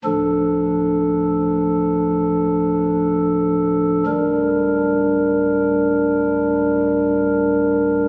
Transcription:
0.04 4.03 D1 medium
0.04 4.03 D2 medium
0.04 4.03 F3 medium
0.04 4.03 D4 medium
0.04 4.04 A4 medium
4.06 8.08 D1 medium
4.06 8.08 D2 medium
4.06 8.08 G3 medium
4.06 8.08 D4 medium
4.06 8.08 A#4 medium

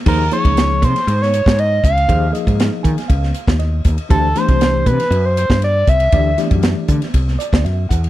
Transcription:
0.06 0.28 D#2 medium
0.06 0.23 F3 medium
0.06 0.23 A#3 medium
0.06 0.23 D#4 medium
0.06 0.23 G#4 medium
0.06 0.31 A#4 medium
0.06 0.23 C5 medium
0.06 kick loud
0.06 crash loud
0.31 0.98 F3 medium
0.31 0.98 A#3 medium
0.31 0.98 D#4 medium
0.31 0.99 G#4 medium
0.31 0.99 C#5 medium
0.31 0.86 C#5 loud
0.31 hi-hat pedal medium
0.31 ride medium
0.45 0.84 C#2 medium
0.45 kick medium
0.45 ride medium
0.57 snare loud
0.57 ride medium
0.82 0.93 C3 medium
0.82 1.23 C5 loud
0.82 kick medium
0.82 hi-hat pedal medium
0.82 ride medium
0.96 snare soft
0.96 ride medium
1.07 1.41 G#2 loud
1.07 ride medium
1.22 1.33 C#5 medium
1.22 snare soft
1.34 1.61 C#5 medium
1.34 hi-hat pedal medium
1.34 ride medium
1.46 1.79 G#2 medium
1.46 kick medium
1.46 snare loud
1.58 1.84 D#5 loud
1.58 ride medium
1.83 2.05 C#2 medium
1.83 2.31 F5 loud
1.83 kick medium
1.83 hi-hat pedal medium
1.83 ride medium
1.97 ride medium
2.08 2.30 D#2 medium
2.08 2.25 F3 medium
2.08 2.25 A#3 medium
2.08 2.25 D#4 medium
2.08 2.25 G#4 medium
2.08 2.26 C5 medium
2.08 kick loud
2.08 ride medium
2.32 2.99 F3 medium
2.32 3.00 A#3 medium
2.32 3.00 D#4 medium
2.32 3.00 G#4 medium
2.32 3.00 D#5 medium
2.32 hi-hat pedal medium
2.32 ride medium
2.47 2.69 G#2 medium
2.47 kick medium
2.47 ride medium
2.60 snare loud
2.60 ride medium
2.83 2.95 D#3 medium
2.83 3.07 G#5 medium
2.83 kick medium
2.83 hi-hat pedal medium
2.83 ride medium
2.98 snare soft
2.98 ride medium
3.08 3.31 C#2 medium
3.08 3.56 F5 medium
3.08 kick medium
3.08 ride medium
3.23 snare soft
3.34 hi-hat pedal medium
3.34 ride medium
3.47 3.80 D#2 medium
3.47 kick medium
3.47 snare loud
3.59 4.06 D#5 medium
3.59 snare soft
3.59 ride medium
3.85 3.96 D#2 medium
3.85 kick medium
3.85 hi-hat pedal medium
3.85 ride medium
3.98 ride medium
4.09 4.32 D2 loud
4.09 4.26 E3 medium
4.09 4.27 A3 medium
4.09 4.27 D4 medium
4.09 4.27 G4 medium
4.09 4.38 A4 loud
4.09 4.27 C5 medium
4.09 kick loud
4.09 ride medium
4.35 5.02 E3 medium
4.35 5.02 A3 medium
4.35 5.02 D4 medium
4.35 5.03 G4 medium
4.35 5.03 C5 medium
4.35 4.88 C5 medium
4.35 snare soft
4.35 hi-hat pedal medium
4.35 ride medium
4.48 4.88 C2 medium
4.48 kick medium
4.48 ride medium
4.61 snare loud
4.61 ride medium
4.86 4.98 C3 loud
4.86 5.27 B4 loud
4.86 kick medium
4.86 hi-hat pedal medium
4.86 ride medium
5.00 snare soft
5.00 ride medium
5.10 5.44 F#2 loud
5.10 ride medium
5.25 5.37 C5 medium
5.37 5.61 C5 medium
5.37 hi-hat pedal medium
5.37 ride medium
5.50 5.83 G2 medium
5.50 kick medium
5.50 snare loud
5.62 5.90 D5 loud
5.62 snare soft
5.62 ride medium
5.87 6.09 C2 medium
5.87 6.39 E5 loud
5.87 kick medium
5.87 hi-hat pedal medium
5.87 ride medium
6.00 ride medium
6.12 6.35 D2 medium
6.12 6.29 E3 medium
6.12 6.29 A3 medium
6.12 6.30 D4 medium
6.12 6.30 G4 medium
6.12 6.30 D5 medium
6.12 kick loud
6.12 ride medium
6.37 7.05 E3 medium
6.37 7.05 A3 medium
6.37 7.05 D4 medium
6.37 7.05 G4 medium
6.37 7.05 D5 medium
6.37 snare soft
6.37 hi-hat pedal medium
6.37 ride medium
6.51 6.73 F#2 medium
6.51 kick medium
6.51 ride medium
6.63 snare loud
6.63 ride medium
6.88 7.00 D3 medium
6.88 kick medium
6.88 hi-hat pedal medium
6.88 ride medium
7.02 snare soft
7.02 ride medium
7.14 7.36 C2 medium
7.14 kick medium
7.14 ride medium
7.28 snare soft
7.39 7.62 D5 medium
7.39 hi-hat pedal medium
7.39 ride medium
7.52 7.63 D2 medium
7.52 kick medium
7.52 snare loud
7.65 7.87 F#2 medium
7.65 7.88 E5 medium
7.65 snare soft
7.65 ride medium
7.89 8.10 E2 medium
7.89 8.10 F#5 medium
7.89 kick medium
7.89 hi-hat pedal medium
7.89 ride medium
8.04 ride medium

